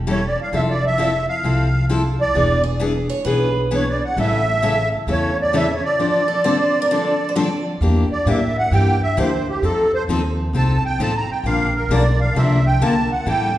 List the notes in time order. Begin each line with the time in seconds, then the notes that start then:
Already playing: E1
0.07 E3 G3 C#4 E4 A4
0.12 C#5
0.27 D5
0.42 F5
0.52 F1 F3 C4 E4 A4 E5
0.70 D5
0.86 E5
0.98 F3 C4 E4 A4
1.29 F5
1.43 C2 F3 C4 E4 A4
1.89 F3 C4 E4 A4
2.21 D5
2.34 E1 E3 B3 D4 G#4
2.64 G#4
2.80 E3 B3 D4 G#4
3.10 C#5
3.25 B1 E3 B3 D4 G#4 B4
3.71 E3 B3 D4 G#4
3.75 C#5
3.89 D5
4.05 F#5
4.17 A1 C#3 E3 A3 C#4 A4 E5
4.62 C#3 E3 A3 C#4 A4
5.07 E2 C#3 E3 A3 C#4 A4
5.12 C#5
5.42 D5
5.53 C#3 E3 A3 C#4 A4 E5
5.75 C#5
5.85 D5
5.99 D3 F3 C4 D4 A4
6.28 A4
6.44 D3 F3 C4 D4 A4 C5
6.82 A#4
6.91 D3 F3 C4 D4 A4
7.29 C5
7.35 D3 F3 C4 D4 A4 D5
7.81 E2 E3 A#3 D4 G4
8.10 D5, muted upright bass stroke
8.26 A2 E3 A#3 D4 G4 E5
8.58 F#5
8.71 G2 E3 A#3 D4 G4 G5
9.03 E5
9.17 D2 E3 A#3 D4 G4 C5
9.49 G4
9.62 F2 F3 C4 D#4 A4
9.94 C5
10.08 D#2 F3 C4 D#4 A4
10.53 C2 F3 C4 D#4 A4 A5
10.83 G5, muted upright bass stroke
10.99 A1 F3 C4 D#4 A4 A5
11.16 A#5
11.28 G5, muted upright bass stroke
11.43 A#1 D3 F3 A#3 D4 A#4 F5
11.76 A#4
11.89 B1 D3 F3 A#3 D4 A#4 D5
12.21 F5
12.35 C2 D3 F3 A#3 D4 A#4 E5
12.67 G5
12.80 D2 D3 F3 A#3 D4 A#4 A5
13.12 F#5
13.26 A2 E3 G3 C#4 E4 A4 G5